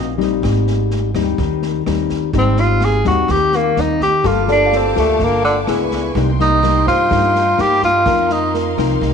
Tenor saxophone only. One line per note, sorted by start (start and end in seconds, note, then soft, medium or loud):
2.38 2.61 C4 medium
2.60 2.86 F4 medium
2.84 3.07 G#4 loud
3.07 3.33 F#4 medium
3.31 3.57 G4 medium
3.56 3.82 A#3 medium
3.80 4.02 D#4 medium
4.02 4.29 G4 medium
4.27 4.50 F4 medium
4.52 4.78 D4 medium
4.76 4.98 C4 medium
4.99 5.25 A3 medium
5.24 5.44 A#3 medium
5.44 5.58 D3 medium
6.41 6.84 D#4 medium
6.88 7.63 F4 medium
7.61 7.83 G4 medium
7.84 8.33 F4 medium
8.32 8.54 D#4 medium